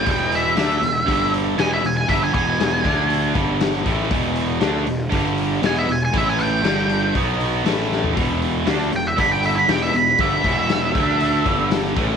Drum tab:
HH |o-o-o-o-o-o-o-o-|o-o-o-o-o-o-o-o-|o-o-o-o-o-o-o-o-|o-o-o-o-o-o-o---|
SD |----o-------o--o|----o-------o--o|----o-------o---|----o-------ooo-|
FT |----------------|----------------|----------------|---------------o|
BD |o-------o-------|o-o---o---o---o-|o-------o-------|o-------o-------|

HH |o-o-o-o-o-o-o-o-|o-o-o-o-o-o-o-o-|
SD |----o-------o--o|----o-------oo--|
FT |----------------|----------------|
BD |o-------o-------|o-o---o---o---o-|